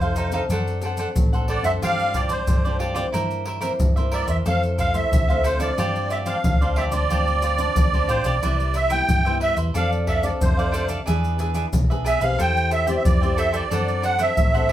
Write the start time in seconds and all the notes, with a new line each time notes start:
Already playing: F2 C3 C5
0.01 C4 D#4 A4 C5 F5, pandeiro, maracas
0.16 D#4 A4 C5 F5, pandeiro, maracas
0.31 C4 D4 D#4 A4 C5 F5, pandeiro, maracas
0.49 F#2 F#3 D4 A4 C5 F#5, pandeiro, maracas, surdo
0.67 pandeiro, maracas
0.81 C4 D4 A4 C5, pandeiro, maracas
0.86 F#5
0.97 D4 A4 C5 F#5, pandeiro, maracas
1.15 A1 F#3, pandeiro, maracas, surdo
1.32 C4 D4 A4 C5 F#5, pandeiro, maracas
1.48 D4 A4 C5 D5 F#5, pandeiro
1.62 F#2 F3 C4 D4 A4 C5 E5 F#5, pandeiro, maracas
1.81 G2 F4 G4 C5 D5 F5, pandeiro, maracas, surdo
1.99 pandeiro, maracas
2.13 F3 C4 D4 F4 G4 C5 D5, pandeiro, maracas, surdo
2.29 G4 C5 D5, pandeiro, maracas
2.47 G2 D3, pandeiro, maracas, surdo
2.65 F3 C4 D4 G4 C5 D5, pandeiro, maracas
2.79 F4 G4 C5 D5, pandeiro
2.95 E3 A#3 C4 F4 G4 C5 D5, pandeiro, maracas
3.12 G2 E4 A#4 C5 E5, pandeiro, maracas, surdo
3.31 pandeiro, maracas
3.45 E4 A#4 C5 E5, pandeiro
3.60 E3 A#3 C4 E4 A#4 C5 E5, pandeiro, maracas
3.79 G2, pandeiro, maracas, surdo
3.96 E3 A#3 C4 A#4 C5 E5, pandeiro, maracas
4.12 E4 A#4 C5 D5 E5, pandeiro
4.27 E2 A#4 C5 E5, pandeiro, maracas
4.45 F2 E3 A3 C4 A4 C5 F5, pandeiro, maracas, surdo
4.63 pandeiro, maracas
4.78 E4 A4 C5 F5, pandeiro, maracas, surdo
4.93 E3 A3 C4 A4 C5 E5, pandeiro, maracas
5.11 D2 C3, pandeiro, maracas, surdo
5.29 E3 A3 C4 A4 C5 F5, pandeiro, maracas
5.44 E4 A4 C5 F5, pandeiro, maracas
5.59 F3 C4 D4 E4 A4 C5 D5 F5, pandeiro, maracas
5.78 G2 F4 G4 C5 D5, pandeiro, maracas, surdo
5.96 pandeiro, maracas
6.10 F4 G4 C5 D5 E5, pandeiro, maracas
6.25 F3 C4 D4 F4 G4 C5 D5 F5, pandeiro, maracas
6.44 D2 D3, pandeiro, maracas, surdo
6.61 F3 C4 D4 G4 C5 D5, pandeiro, maracas
6.76 F4 G4 C5 D5 E5, pandeiro
6.92 D2 F3 C4 D4 G4 C5 D5, pandeiro, maracas
7.10 D2 G2 F3 C4 D4 F4 G4 C5 D5, pandeiro, maracas, surdo
7.27 pandeiro, maracas
7.42 F4 G4 C5 D5, pandeiro, maracas
7.57 F3 C4 D4 G4 C5 D5, pandeiro, maracas
7.76 D2 D3, pandeiro, maracas, surdo
7.93 F3 C4 D4 G4 C5 D5, pandeiro, maracas
8.08 A1 F4 G4 C5 D5, pandeiro, maracas
8.24 B1 F4 G4 C5 D5, pandeiro, maracas
8.42 C2 C3 G3 E4 B4 C5 E5, pandeiro, maracas, surdo
8.60 pandeiro, maracas
8.74 E4 B4 C5 E5, pandeiro, maracas
8.89 G3 B3 E4 B4 C5 E5 G5, pandeiro, maracas
9.08 G2, pandeiro, maracas, surdo
9.25 G3 B3 E4 B4 C5 E5, pandeiro, maracas
9.40 E4 B4 C5 E5, pandeiro
9.56 E2 B4 C5 E5, pandeiro, maracas
9.74 F2 F3 C4 D4 A4 D5 F5, pandeiro, maracas, surdo
9.92 pandeiro, maracas
10.07 D4 A4 D5 E5 F5, pandeiro, surdo
10.22 C4 D4 A4 D5 F5, pandeiro, maracas
10.41 F2 C3 C5, pandeiro, maracas, surdo
10.57 A4 D5 F5, pandeiro, maracas
10.72 C4 D4 A4 D5 F5, pandeiro, maracas
10.89 D4 A4 D5 F5, pandeiro, maracas
11.06 E2 E3 B3 D4 G#4 B4 E5, pandeiro, maracas, surdo
11.24 pandeiro, maracas
11.38 B3 D4 G#4 B4 E5, pandeiro, maracas
11.54 D4 G#4 B4 E5, pandeiro, maracas
11.73 B1 B2, pandeiro, maracas, surdo
11.90 B3 D4 G#4 B4 E5, pandeiro, maracas
12.04 D4 G#4 B4 E5, pandeiro, maracas
12.20 B1 C4 G4 G#4 B4 E5 F5, pandeiro, maracas
12.39 E2 E3 A4 C5 E5 G5, pandeiro, maracas, surdo
12.57 pandeiro, maracas
12.71 A4 C5 E5 G5, pandeiro, maracas
12.87 B3 C4 G4 C5 D5 E5 G5, pandeiro, maracas
12.96 E5
13.04 F2 E3 D5, pandeiro, maracas, surdo
13.21 B3 C4 G4 C5 E5 G5, pandeiro, maracas
13.37 A4 C5 E5 G5, pandeiro, maracas
13.52 A4 C5 D5 E5 G5, pandeiro, maracas
13.71 F#2 F#3 C4 D4 A4 C5 F#5, pandeiro, maracas, surdo
13.88 pandeiro, maracas
14.02 D4 A4 C5 F#5, pandeiro, maracas
14.18 C4 D4 A4 C5 E5 F#5, pandeiro, maracas
14.37 A1 F#3, pandeiro, maracas, surdo
14.54 C4 D4 A4 C5 F#5, pandeiro, maracas
14.69 D4, pandeiro